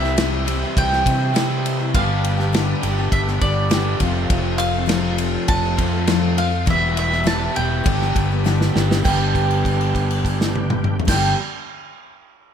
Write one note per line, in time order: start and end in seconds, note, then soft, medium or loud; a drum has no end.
0.00 0.63 C2 loud
0.00 0.44 C3 medium
0.00 0.44 E3 loud
0.00 0.46 G3 loud
0.00 0.45 C4 loud
0.00 0.44 E4 loud
0.00 0.17 E4 soft
0.00 1.90 G4 medium
0.00 0.16 G4 medium
0.00 1.93 C5 medium
0.00 0.79 E5 medium
0.00 1.89 E5 medium
0.00 1.93 C6 medium
0.04 0.17 C4 soft
0.04 snare soft
0.17 0.46 C3 medium
0.17 0.45 G3 medium
0.17 0.47 C4 medium
0.17 0.47 E4 medium
0.17 0.48 G4 medium
0.17 snare loud
0.17 ride loud
0.45 1.32 C3 medium
0.45 1.33 E3 medium
0.45 0.61 G3 medium
0.45 0.62 C4 medium
0.45 1.32 E4 medium
0.45 ride medium
0.50 0.63 E4 medium
0.50 0.62 G4 medium
0.63 0.92 C4 soft
0.63 0.90 E4 medium
0.63 0.89 G4 medium
0.77 1.03 C2 medium
0.77 1.94 G5 loud
0.77 kick loud
0.77 ride loud
0.90 1.07 C4 soft
0.90 1.06 E4 soft
0.90 1.05 G4 medium
0.90 snare soft
1.05 1.96 C3 medium
1.05 1.34 G3 medium
1.05 1.34 C4 medium
1.05 1.35 E4 medium
1.05 1.35 G4 medium
1.05 kick medium
1.05 ride medium
1.34 1.79 C3 medium
1.34 1.92 E3 medium
1.34 1.79 G3 medium
1.34 1.79 C4 medium
1.34 1.80 E4 medium
1.34 1.78 G4 medium
1.34 snare loud
1.34 ride loud
1.66 ride medium
1.80 1.95 C4 soft
1.80 1.95 E4 medium
1.80 1.94 G4 medium
1.94 2.73 G1 medium
1.94 2.38 G2 medium
1.94 2.39 D3 medium
1.94 2.39 G3 medium
1.94 2.39 B3 medium
1.94 2.38 D4 medium
1.94 4.00 G4 medium
1.94 2.36 G4 medium
1.94 4.00 B4 medium
1.94 4.00 D5 medium
1.94 3.08 F5 medium
1.94 4.00 B5 medium
1.94 kick loud
1.94 ride loud
2.24 ride medium
2.38 2.52 G3 soft
2.38 2.53 B3 soft
2.38 2.53 D4 soft
2.38 2.53 G4 medium
2.38 snare soft
2.53 2.82 G2 medium
2.53 2.83 D3 medium
2.53 2.81 G3 medium
2.53 2.83 B3 medium
2.53 2.84 D4 medium
2.53 2.84 G4 loud
2.53 snare loud
2.53 ride loud
2.82 3.09 G1 medium
2.82 3.70 G2 medium
2.82 3.70 D3 medium
2.82 2.97 G3 medium
2.82 2.98 B3 medium
2.82 2.98 D4 medium
2.82 3.69 G4 medium
2.82 ride medium
2.86 2.97 G4 medium
2.99 3.29 G3 soft
2.99 3.28 B3 soft
2.99 3.27 D4 medium
2.99 3.26 G4 medium
3.12 3.38 G1 medium
3.12 3.21 E5 medium
3.12 kick loud
3.12 ride loud
3.27 3.40 G3 soft
3.27 3.42 B3 soft
3.27 3.42 D4 medium
3.27 3.42 G4 medium
3.27 snare soft
3.41 3.95 G1 loud
3.41 3.70 G3 medium
3.41 3.70 B3 medium
3.41 3.71 D4 medium
3.41 3.71 G4 medium
3.41 3.97 D5 medium
3.41 kick medium
3.41 ride medium
3.70 4.00 G2 medium
3.70 4.01 D3 medium
3.70 4.00 G3 loud
3.70 4.01 B3 medium
3.70 4.01 D4 medium
3.70 4.01 G4 medium
3.70 snare loud
3.70 ride loud
4.00 4.27 F1 loud
4.00 4.87 F2 loud
4.00 4.88 C3 medium
4.00 4.74 F3 medium
4.00 4.88 A3 loud
4.00 4.75 C4 medium
4.00 4.74 F4 loud
4.00 4.73 A4 medium
4.00 kick medium
4.00 ride medium
4.04 6.67 A4 medium
4.04 6.67 C5 medium
4.04 6.67 F5 medium
4.04 6.67 C6 medium
4.30 5.36 F1 medium
4.30 kick loud
4.30 ride loud
4.58 5.44 F5 loud
4.58 ride medium
4.74 4.85 C4 soft
4.74 4.87 F4 medium
4.74 4.87 A4 medium
4.86 5.76 F2 medium
4.86 5.76 C3 medium
4.86 5.15 F3 medium
4.86 5.17 C4 medium
4.86 5.18 F4 medium
4.86 5.19 A4 medium
4.86 snare loud
4.86 ride loud
4.90 5.77 A3 medium
4.90 5.77 C4 medium
5.16 5.62 F3 medium
5.16 5.63 C4 medium
5.16 5.63 F4 medium
5.16 ride medium
5.20 5.61 A4 medium
5.48 5.75 F1 loud
5.48 6.38 A5 loud
5.48 kick loud
5.48 ride loud
5.62 5.79 F4 medium
5.62 5.78 A4 medium
5.67 5.79 C4 soft
5.77 6.69 F2 medium
5.77 6.37 F2 medium
5.77 6.37 C3 medium
5.77 5.93 F3 medium
5.77 6.36 A3 medium
5.77 5.94 C4 medium
5.77 5.93 F4 medium
5.77 kick medium
5.77 ride medium
5.81 5.92 A4 medium
5.93 6.07 C4 soft
5.93 6.07 F4 medium
5.93 6.08 A4 medium
6.07 6.52 F3 loud
6.07 6.53 C4 medium
6.07 6.51 F4 loud
6.07 6.50 A4 loud
6.07 snare loud
6.07 ride loud
6.38 6.69 F5 loud
6.38 ride medium
6.51 6.67 F4 medium
6.51 6.67 A4 medium
6.55 6.67 C4 soft
6.66 7.47 E1 medium
6.66 7.54 E2 loud
6.66 7.54 B2 loud
6.66 7.11 E3 medium
6.66 7.11 G3 medium
6.66 7.11 B3 medium
6.66 7.10 E4 loud
6.66 7.08 G4 medium
6.66 9.03 B5 medium
6.66 kick loud
6.66 ride loud
6.70 9.04 G4 medium
6.70 7.86 B4 medium
6.70 7.86 E5 medium
6.70 6.97 E5 medium
6.97 7.27 E5 medium
6.97 ride medium
7.10 7.25 B3 soft
7.10 7.24 E4 soft
7.10 7.26 G4 medium
7.10 snare soft
7.24 7.55 E3 medium
7.24 7.53 G3 medium
7.24 7.55 B3 medium
7.24 7.55 E4 medium
7.24 7.56 G4 loud
7.24 7.56 A5 loud
7.24 snare loud
7.24 ride loud
7.54 7.83 E1 medium
7.54 7.85 E3 medium
7.54 7.84 G3 medium
7.54 7.84 B3 medium
7.54 7.85 E4 medium
7.54 7.85 G4 medium
7.54 8.71 G5 medium
7.54 ride medium
7.59 7.85 E2 medium
7.59 7.85 B2 medium
7.84 8.12 G1 medium
7.84 8.00 G2 medium
7.84 8.00 D3 medium
7.84 8.00 G3 medium
7.84 8.00 B3 medium
7.84 7.99 D4 medium
7.84 7.98 G4 medium
7.84 9.04 B4 medium
7.84 9.04 D5 medium
7.84 kick loud
7.84 ride loud
7.99 8.13 G3 soft
7.99 8.14 B3 medium
7.99 8.15 D4 soft
7.99 8.15 G4 medium
7.99 snare soft
8.14 8.69 G1 loud
8.14 8.30 G3 medium
8.14 8.30 B3 medium
8.14 8.31 D4 medium
8.14 8.29 G4 medium
8.14 kick medium
8.14 ride medium
8.30 8.45 G3 medium
8.30 8.45 B3 medium
8.30 8.45 D4 medium
8.30 8.45 G4 medium
8.44 8.89 G2 loud
8.44 8.90 D3 loud
8.44 8.90 G3 loud
8.44 8.90 B3 loud
8.44 8.89 D4 loud
8.44 8.87 G4 loud
8.44 snare medium
8.61 snare medium
8.74 9.02 G1 loud
8.74 9.05 G2 medium
8.74 9.04 D3 medium
8.74 9.01 G3 medium
8.74 9.03 B3 medium
8.74 9.03 D4 medium
8.74 9.03 G4 medium
8.74 snare loud
8.89 9.05 B3 medium
8.89 9.05 D4 medium
8.89 9.04 G4 medium
8.89 snare loud
8.93 9.05 G3 medium
9.03 10.96 G1 medium
9.03 11.05 G2 medium
9.03 11.07 D3 medium
9.03 11.09 G3 medium
9.03 10.96 G5 medium
9.03 kick loud
9.03 crash medium
9.07 11.10 B3 medium
9.07 10.97 D4 medium
9.07 11.11 D4 medium
9.07 10.97 G4 medium
9.07 11.12 G4 loud
9.07 10.97 B4 medium
9.07 10.97 G5 medium
9.35 kick medium
9.35 crash soft
9.51 crash medium
9.65 kick medium
9.65 crash medium
9.81 crash soft
9.95 kick medium
9.95 crash medium
10.11 crash medium
10.25 kick medium
10.25 crash medium
10.41 snare medium
10.56 high tom medium
10.70 mid tom medium
10.84 mid tom loud
11.00 floor tom loud
11.05 11.33 G1 loud
11.05 11.33 G2 medium
11.05 11.34 D3 medium
11.05 11.33 D4 medium
11.05 11.32 G4 medium
11.05 11.33 G5 medium
11.05 kick loud
11.05 snare loud
11.05 crash loud
11.09 11.35 G3 medium
11.09 11.35 B3 medium
11.09 11.36 D4 medium
11.09 11.37 G4 loud
11.09 11.33 B4 medium